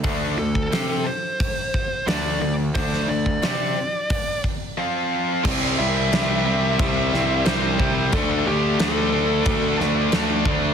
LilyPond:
<<
  \new Staff \with { instrumentName = "Lead electric guitar" } { \time 4/4 \key d \minor \tempo 4 = 89 r8 a'4 c''4. d''8 d''8 | c''8 d''2 r4. | r8 e''4. e''4 c''8 c''8 | a'8 g'8 a'4. r4. | }
  \new Staff \with { instrumentName = "Distorted electric guitar" } { \time 4/4 \key d \minor <d a d'>8 <d a>8 <c' g' c''>8 r4. <d a d'>8 <d a>8 | <d a d'>8 <d a>8 <c' g' c''>8 r4. <f c' f'>4 | <c g c'>8 <c g c'>8 <c g c'>8 <c g c'>8 <c g c'>8 <c g c'>8 <c g c'>8 <c g c'>8 | <d a d'>8 <d a d'>8 <d a d'>8 <d a d'>8 <d a d'>8 <d a d'>8 <d a d'>8 <d a d'>8 | }
  \new Staff \with { instrumentName = "Distorted electric guitar" } { \time 4/4 \key d \minor <d a d'>8 <d a>8 <c' g' c''>8 r4. <d a d'>8 <d a>8 | <d a d'>8 <d a>8 <c' g' c''>8 r4. <f c' f'>4 | <c g c'>8 <c g c'>8 <c g c'>8 <c g c'>8 <c g c'>8 <c g c'>8 <c g c'>8 <c g c'>8 | <d a d'>8 <d a d'>8 <d a d'>8 <d a d'>8 <d a d'>8 <d a d'>8 <d a d'>8 <d a d'>8 | }
  \new Staff \with { instrumentName = "Distorted electric guitar" } { \clef bass \time 4/4 \key d \minor r1 | r1 | <c g c'>4. <c g c'>2~ <c g c'>8 | <d a d'>4. <d a d'>2~ <d a d'>8 | }
  \new Staff \with { instrumentName = "Picked electric bass" } { \clef bass \time 4/4 \key d \minor d,8 d,8 c8 r4. d,8 d,8 | d,8 d,8 c8 r2 r8 | c,8 c,8 c,4 c,8 c,8 c,8 c,8 | d,8 d,8 d,4 d,8 d,8 d,8 d,8 | }
  \new DrumStaff \with { instrumentName = "Drums" } \drummode { \time 4/4 <hho bd>8. bd16 <hho sn>4 <hho bd>8 bd8 <hho sn>4 | <hho bd>16 sn8 bd16 <hho sn>4 <hho bd>8 bd8 r4 | <cymc bd>4 <cymc sn>4 <cymc bd>8 sn8 <cymc sn>8 bd8 | <cymc bd>4 <cymc sn>4 <cymc bd>8 sn8 <cymc sn>8 bd8 | }
>>